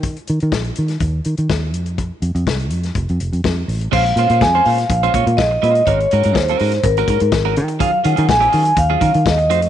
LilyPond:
<<
  \new Staff \with { instrumentName = "Vibraphone" } { \time 4/4 \key ees \dorian \tempo 4 = 124 r1 | r1 | f''4 aes''8 f''4. ees''8 ees''8 | des''4 c''4 bes'4. r8 |
f''8 ges''8 aes''4 f''4 ees''4 | }
  \new Staff \with { instrumentName = "Clean electric guitar" } { \time 4/4 \key ees \dorian r1 | r1 | <aes des' f' c''>8 <aes des' f' c''>16 <aes des' f' c''>16 r16 <aes des' f' c''>16 <aes des' f' c''>16 r8 <aes des' f' c''>16 <aes des' f' des''>16 r8. <aes des' f' c''>8 | <aes des' ges' bes'>8 <aes des' ges' bes'>16 <aes des' ges' bes'>16 r16 <aes des' ges' bes'>16 <aes des' ges' bes'>16 r8 <aes des' ges' bes'>16 <aes des' ges' bes'>16 r8 <aes des' ges' bes'>8 r16 |
<ges des' f' aes'>8 <ges des' f' aes'>16 <ges des' f' aes'>16 r16 <ges des' f' aes'>16 <ges des' f' aes'>16 r8 <ges des' f' aes'>16 <ges des' f' bes'>16 r8. <a ees' ges' c''>8 | }
  \new Staff \with { instrumentName = "Fingered electric bass" } { \clef bass \time 4/4 \key ees \dorian ees8 ees16 ees16 bes,,8 ees8 ees,8 ees16 ees16 ees,8 f,8~ | f,8 f,16 f,16 c,8 f,8 f,,16 f,16 f,,16 f,16 f,8 a,,8 | bes,,8 bes,16 bes,16 f,8 bes,8 bes,,8 bes,16 bes,16 bes,,8 bes,8 | aes,,8 aes,16 aes,16 ees,8 aes,8 aes,,8 aes,16 aes,16 aes,,8 ees8~ |
ees8 ees16 ees16 bes,,8 ees8 ees,8 ees16 ees16 ees,8 f,8 | }
  \new DrumStaff \with { instrumentName = "Drums" } \drummode { \time 4/4 <hh bd>16 hh16 hh16 hh16 <bd sn>16 hh16 hh16 <hh sn>16 <hh bd>8 hh16 hh16 <bd sn>8 hh16 hh16 | <hh bd>8 hh16 hh16 <bd sn>16 hh16 hh16 <hh sn>16 <hh bd>16 hh16 hh16 hh16 <bd sn>8 hho16 hh16 | <cymc bd>16 hh16 hh16 hh16 <bd sn>8 hho16 <hh sn>16 <hh bd>16 hh16 <hh bd>16 hh16 <bd sn>8 hh16 hh16 | <hh bd>16 hh16 hh16 hh16 <bd sn>16 hh16 hho16 <hh sn>16 <hh bd>16 hh16 <hh bd>16 hh16 <bd sn>8 hh16 hh16 |
<hh bd>8 hh16 hh16 <bd sn>16 hh16 hho16 hh16 <hh bd>8 <hh bd>16 hh16 <bd sn>16 hh16 hh16 hh16 | }
>>